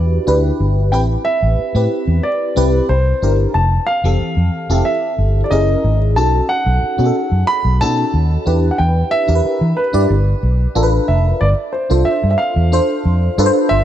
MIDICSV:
0, 0, Header, 1, 5, 480
1, 0, Start_track
1, 0, Tempo, 655022
1, 683, Time_signature, 4, 2, 24, 8
1, 10142, End_track
2, 0, Start_track
2, 0, Title_t, "Grand piano"
2, 0, Program_c, 0, 0
2, 0, Note_on_c, 0, 74, 77
2, 173, Note_off_c, 0, 74, 0
2, 673, Note_on_c, 0, 79, 76
2, 728, Note_off_c, 0, 79, 0
2, 914, Note_on_c, 0, 76, 91
2, 1637, Note_on_c, 0, 74, 77
2, 1659, Note_off_c, 0, 76, 0
2, 2090, Note_off_c, 0, 74, 0
2, 2120, Note_on_c, 0, 72, 77
2, 2455, Note_off_c, 0, 72, 0
2, 2596, Note_on_c, 0, 81, 79
2, 2821, Note_off_c, 0, 81, 0
2, 2832, Note_on_c, 0, 77, 90
2, 3554, Note_on_c, 0, 76, 86
2, 3578, Note_off_c, 0, 77, 0
2, 3957, Note_off_c, 0, 76, 0
2, 3987, Note_on_c, 0, 74, 62
2, 4035, Note_on_c, 0, 75, 84
2, 4040, Note_off_c, 0, 74, 0
2, 4373, Note_off_c, 0, 75, 0
2, 4516, Note_on_c, 0, 81, 86
2, 4756, Note_on_c, 0, 78, 89
2, 4766, Note_off_c, 0, 81, 0
2, 5476, Note_on_c, 0, 83, 100
2, 5500, Note_off_c, 0, 78, 0
2, 5722, Note_on_c, 0, 81, 105
2, 5726, Note_off_c, 0, 83, 0
2, 6384, Note_on_c, 0, 78, 61
2, 6411, Note_off_c, 0, 81, 0
2, 6436, Note_on_c, 0, 79, 82
2, 6439, Note_off_c, 0, 78, 0
2, 6676, Note_on_c, 0, 76, 103
2, 6687, Note_off_c, 0, 79, 0
2, 7157, Note_on_c, 0, 71, 78
2, 7174, Note_off_c, 0, 76, 0
2, 7852, Note_off_c, 0, 71, 0
2, 8120, Note_on_c, 0, 76, 76
2, 8359, Note_on_c, 0, 74, 79
2, 8369, Note_off_c, 0, 76, 0
2, 8413, Note_off_c, 0, 74, 0
2, 8593, Note_on_c, 0, 72, 65
2, 8831, Note_on_c, 0, 76, 80
2, 8846, Note_off_c, 0, 72, 0
2, 9008, Note_off_c, 0, 76, 0
2, 9019, Note_on_c, 0, 76, 67
2, 9071, Note_on_c, 0, 77, 85
2, 9078, Note_off_c, 0, 76, 0
2, 10033, Note_on_c, 0, 76, 102
2, 10067, Note_off_c, 0, 77, 0
2, 10142, Note_off_c, 0, 76, 0
2, 10142, End_track
3, 0, Start_track
3, 0, Title_t, "FM electric piano"
3, 0, Program_c, 1, 5
3, 0, Control_c, 1, 64, 127
3, 0, Note_on_c, 1, 62, 69
3, 0, Note_on_c, 1, 64, 67
3, 0, Note_on_c, 1, 66, 51
3, 0, Note_on_c, 1, 67, 68
3, 0, Note_on_c, 1, 71, 81
3, 197, Note_off_c, 1, 62, 0
3, 197, Note_on_c, 1, 62, 80
3, 199, Note_off_c, 1, 64, 0
3, 199, Note_on_c, 1, 64, 74
3, 202, Note_off_c, 1, 67, 0
3, 202, Note_on_c, 1, 67, 81
3, 205, Note_off_c, 1, 71, 0
3, 205, Note_on_c, 1, 71, 91
3, 556, Note_off_c, 1, 62, 0
3, 557, Note_off_c, 1, 64, 0
3, 559, Note_off_c, 1, 67, 0
3, 560, Note_off_c, 1, 71, 0
3, 678, Note_on_c, 1, 60, 65
3, 679, Note_on_c, 1, 64, 61
3, 683, Note_on_c, 1, 67, 58
3, 686, Note_on_c, 1, 71, 69
3, 693, Control_c, 1, 64, 0
3, 698, Note_off_c, 1, 66, 0
3, 816, Control_c, 1, 64, 127
3, 1125, Note_off_c, 1, 60, 0
3, 1126, Note_off_c, 1, 64, 0
3, 1128, Note_off_c, 1, 67, 0
3, 1130, Note_off_c, 1, 71, 0
3, 1281, Note_on_c, 1, 60, 61
3, 1283, Note_on_c, 1, 64, 57
3, 1287, Note_on_c, 1, 67, 59
3, 1290, Note_on_c, 1, 71, 67
3, 1727, Note_off_c, 1, 60, 0
3, 1728, Note_off_c, 1, 64, 0
3, 1729, Note_off_c, 1, 67, 0
3, 1731, Note_off_c, 1, 71, 0
3, 1876, Note_on_c, 1, 60, 80
3, 1880, Note_on_c, 1, 64, 75
3, 1881, Note_on_c, 1, 67, 73
3, 1886, Note_on_c, 1, 71, 89
3, 2119, Note_off_c, 1, 60, 0
3, 2121, Note_off_c, 1, 64, 0
3, 2121, Note_off_c, 1, 67, 0
3, 2123, Note_off_c, 1, 71, 0
3, 2130, Control_c, 1, 64, 0
3, 2272, Control_c, 1, 64, 127
3, 2361, Note_on_c, 1, 62, 59
3, 2365, Note_on_c, 1, 64, 53
3, 2368, Note_on_c, 1, 67, 53
3, 2369, Note_on_c, 1, 70, 69
3, 2601, Note_off_c, 1, 62, 0
3, 2603, Note_off_c, 1, 64, 0
3, 2604, Note_off_c, 1, 67, 0
3, 2605, Note_off_c, 1, 70, 0
3, 2609, Control_c, 1, 64, 0
3, 2755, Control_c, 1, 64, 127
3, 2961, Note_on_c, 1, 60, 65
3, 2964, Note_on_c, 1, 52, 59
3, 2967, Note_on_c, 1, 67, 55
3, 2971, Note_on_c, 1, 69, 71
3, 3317, Note_off_c, 1, 60, 0
3, 3319, Note_off_c, 1, 52, 0
3, 3320, Note_off_c, 1, 67, 0
3, 3322, Note_off_c, 1, 69, 0
3, 3441, Note_on_c, 1, 60, 70
3, 3442, Note_on_c, 1, 64, 66
3, 3445, Note_on_c, 1, 67, 69
3, 3448, Note_on_c, 1, 69, 86
3, 3886, Note_off_c, 1, 60, 0
3, 3887, Note_off_c, 1, 64, 0
3, 3889, Note_off_c, 1, 67, 0
3, 3890, Note_off_c, 1, 69, 0
3, 4038, Note_on_c, 1, 61, 74
3, 4041, Note_on_c, 1, 64, 72
3, 4042, Note_on_c, 1, 68, 66
3, 4047, Note_on_c, 1, 70, 77
3, 4051, Control_c, 1, 64, 0
3, 4197, Control_c, 1, 64, 127
3, 4396, Note_off_c, 1, 61, 0
3, 4398, Note_off_c, 1, 64, 0
3, 4398, Note_off_c, 1, 68, 0
3, 4401, Note_off_c, 1, 70, 0
3, 4518, Note_on_c, 1, 61, 66
3, 4520, Note_on_c, 1, 63, 63
3, 4522, Note_on_c, 1, 66, 64
3, 4525, Note_on_c, 1, 69, 75
3, 4530, Control_c, 1, 64, 0
3, 4638, Control_c, 1, 64, 127
3, 4965, Note_off_c, 1, 61, 0
3, 4966, Note_off_c, 1, 63, 0
3, 4967, Note_off_c, 1, 66, 0
3, 4969, Note_off_c, 1, 69, 0
3, 5115, Note_on_c, 1, 61, 60
3, 5117, Note_on_c, 1, 63, 56
3, 5121, Note_on_c, 1, 66, 56
3, 5125, Note_on_c, 1, 68, 55
3, 5170, Note_on_c, 1, 69, 69
3, 5171, Note_off_c, 1, 68, 0
3, 5564, Note_off_c, 1, 61, 0
3, 5565, Note_off_c, 1, 63, 0
3, 5567, Note_off_c, 1, 66, 0
3, 5592, Note_off_c, 1, 69, 0
3, 5723, Note_on_c, 1, 61, 81
3, 5725, Note_on_c, 1, 63, 77
3, 5729, Note_on_c, 1, 66, 76
3, 5732, Note_on_c, 1, 69, 93
3, 6079, Note_off_c, 1, 61, 0
3, 6080, Note_off_c, 1, 63, 0
3, 6082, Note_off_c, 1, 66, 0
3, 6083, Note_off_c, 1, 69, 0
3, 6197, Note_on_c, 1, 62, 66
3, 6202, Note_on_c, 1, 64, 63
3, 6205, Note_on_c, 1, 67, 66
3, 6206, Note_on_c, 1, 71, 79
3, 6211, Control_c, 1, 64, 0
3, 6335, Control_c, 1, 64, 127
3, 6680, Note_off_c, 1, 62, 0
3, 6682, Note_off_c, 1, 64, 0
3, 6684, Note_off_c, 1, 67, 0
3, 6685, Note_off_c, 1, 71, 0
3, 6797, Note_on_c, 1, 62, 66
3, 6800, Note_on_c, 1, 64, 56
3, 6803, Note_on_c, 1, 67, 58
3, 6805, Note_on_c, 1, 70, 58
3, 6852, Note_off_c, 1, 70, 0
3, 6854, Note_on_c, 1, 71, 76
3, 7157, Note_off_c, 1, 62, 0
3, 7158, Note_off_c, 1, 64, 0
3, 7159, Note_off_c, 1, 67, 0
3, 7185, Note_off_c, 1, 71, 0
3, 7276, Note_on_c, 1, 62, 68
3, 7279, Note_on_c, 1, 64, 74
3, 7283, Note_on_c, 1, 67, 67
3, 7286, Note_on_c, 1, 74, 81
3, 7400, Note_off_c, 1, 62, 0
3, 7401, Note_off_c, 1, 64, 0
3, 7403, Note_off_c, 1, 67, 0
3, 7405, Note_off_c, 1, 74, 0
3, 7413, Control_c, 1, 64, 0
3, 7529, Control_c, 1, 64, 127
3, 7880, Note_on_c, 1, 62, 85
3, 7881, Note_on_c, 1, 65, 82
3, 7884, Note_on_c, 1, 69, 85
3, 7887, Note_on_c, 1, 70, 70
3, 7933, Note_off_c, 1, 70, 0
3, 7935, Note_on_c, 1, 71, 95
3, 8238, Note_off_c, 1, 62, 0
3, 8239, Note_off_c, 1, 65, 0
3, 8241, Note_off_c, 1, 69, 0
3, 8266, Note_off_c, 1, 71, 0
3, 8375, Control_c, 1, 64, 0
3, 8518, Control_c, 1, 64, 127
3, 8718, Note_on_c, 1, 62, 71
3, 8722, Note_on_c, 1, 65, 74
3, 8725, Note_on_c, 1, 69, 66
3, 8727, Note_on_c, 1, 72, 80
3, 9167, Note_off_c, 1, 62, 0
3, 9169, Note_off_c, 1, 65, 0
3, 9170, Note_off_c, 1, 69, 0
3, 9172, Note_off_c, 1, 72, 0
3, 9322, Note_on_c, 1, 62, 75
3, 9324, Note_on_c, 1, 65, 66
3, 9328, Note_on_c, 1, 69, 62
3, 9330, Note_on_c, 1, 72, 84
3, 9680, Note_off_c, 1, 62, 0
3, 9681, Note_off_c, 1, 65, 0
3, 9683, Note_off_c, 1, 69, 0
3, 9684, Note_off_c, 1, 72, 0
3, 9807, Note_on_c, 1, 62, 94
3, 9809, Note_on_c, 1, 65, 94
3, 9811, Note_on_c, 1, 69, 94
3, 9815, Note_on_c, 1, 71, 86
3, 9858, Note_off_c, 1, 71, 0
3, 9863, Note_on_c, 1, 72, 109
3, 10142, Note_off_c, 1, 62, 0
3, 10142, Note_off_c, 1, 65, 0
3, 10142, Note_off_c, 1, 69, 0
3, 10142, Note_off_c, 1, 72, 0
3, 10142, End_track
4, 0, Start_track
4, 0, Title_t, "Fingered electric bass"
4, 0, Program_c, 2, 33
4, 0, Note_on_c, 2, 40, 77
4, 127, Note_off_c, 2, 40, 0
4, 203, Note_on_c, 2, 38, 81
4, 367, Note_off_c, 2, 38, 0
4, 442, Note_on_c, 2, 31, 89
4, 683, Note_off_c, 2, 31, 0
4, 683, Note_on_c, 2, 33, 88
4, 847, Note_off_c, 2, 33, 0
4, 1045, Note_on_c, 2, 33, 78
4, 1126, Note_off_c, 2, 33, 0
4, 1281, Note_on_c, 2, 45, 98
4, 1363, Note_off_c, 2, 45, 0
4, 1521, Note_on_c, 2, 40, 76
4, 1603, Note_off_c, 2, 40, 0
4, 1882, Note_on_c, 2, 36, 75
4, 2046, Note_off_c, 2, 36, 0
4, 2120, Note_on_c, 2, 36, 88
4, 2285, Note_off_c, 2, 36, 0
4, 2362, Note_on_c, 2, 31, 87
4, 2526, Note_off_c, 2, 31, 0
4, 2601, Note_on_c, 2, 29, 87
4, 2765, Note_off_c, 2, 29, 0
4, 2959, Note_on_c, 2, 29, 81
4, 3042, Note_off_c, 2, 29, 0
4, 3201, Note_on_c, 2, 41, 85
4, 3283, Note_off_c, 2, 41, 0
4, 3440, Note_on_c, 2, 29, 73
4, 3523, Note_off_c, 2, 29, 0
4, 3799, Note_on_c, 2, 31, 81
4, 3964, Note_off_c, 2, 31, 0
4, 4040, Note_on_c, 2, 30, 88
4, 4205, Note_off_c, 2, 30, 0
4, 4281, Note_on_c, 2, 32, 96
4, 4522, Note_off_c, 2, 32, 0
4, 4522, Note_on_c, 2, 35, 93
4, 4686, Note_off_c, 2, 35, 0
4, 4883, Note_on_c, 2, 35, 94
4, 4965, Note_off_c, 2, 35, 0
4, 5121, Note_on_c, 2, 47, 102
4, 5203, Note_off_c, 2, 47, 0
4, 5361, Note_on_c, 2, 42, 76
4, 5444, Note_off_c, 2, 42, 0
4, 5604, Note_on_c, 2, 35, 87
4, 5722, Note_on_c, 2, 47, 83
4, 5733, Note_off_c, 2, 35, 0
4, 5886, Note_off_c, 2, 47, 0
4, 5963, Note_on_c, 2, 39, 78
4, 6127, Note_off_c, 2, 39, 0
4, 6205, Note_on_c, 2, 40, 97
4, 6369, Note_off_c, 2, 40, 0
4, 6445, Note_on_c, 2, 40, 95
4, 6609, Note_off_c, 2, 40, 0
4, 6805, Note_on_c, 2, 40, 89
4, 6886, Note_off_c, 2, 40, 0
4, 7044, Note_on_c, 2, 52, 87
4, 7126, Note_off_c, 2, 52, 0
4, 7284, Note_on_c, 2, 43, 68
4, 7366, Note_off_c, 2, 43, 0
4, 7403, Note_on_c, 2, 31, 97
4, 7568, Note_off_c, 2, 31, 0
4, 7643, Note_on_c, 2, 35, 80
4, 7808, Note_off_c, 2, 35, 0
4, 7883, Note_on_c, 2, 33, 87
4, 8047, Note_off_c, 2, 33, 0
4, 8124, Note_on_c, 2, 29, 91
4, 8289, Note_off_c, 2, 29, 0
4, 8364, Note_on_c, 2, 31, 98
4, 8446, Note_off_c, 2, 31, 0
4, 8726, Note_on_c, 2, 36, 89
4, 8808, Note_off_c, 2, 36, 0
4, 8966, Note_on_c, 2, 43, 96
4, 9048, Note_off_c, 2, 43, 0
4, 9205, Note_on_c, 2, 40, 82
4, 9370, Note_off_c, 2, 40, 0
4, 9566, Note_on_c, 2, 41, 81
4, 9730, Note_off_c, 2, 41, 0
4, 9805, Note_on_c, 2, 43, 92
4, 9887, Note_off_c, 2, 43, 0
4, 10045, Note_on_c, 2, 31, 81
4, 10142, Note_off_c, 2, 31, 0
4, 10142, End_track
5, 0, Start_track
5, 0, Title_t, "Muted fingered electric bass strokes"
5, 1163, Note_on_c, 9, 29, 46
5, 1236, Note_off_c, 9, 29, 0
5, 3083, Note_on_c, 9, 29, 41
5, 3156, Note_off_c, 9, 29, 0
5, 5005, Note_on_c, 9, 29, 48
5, 5078, Note_off_c, 9, 29, 0
5, 6924, Note_on_c, 9, 29, 45
5, 6997, Note_off_c, 9, 29, 0
5, 10142, End_track
0, 0, End_of_file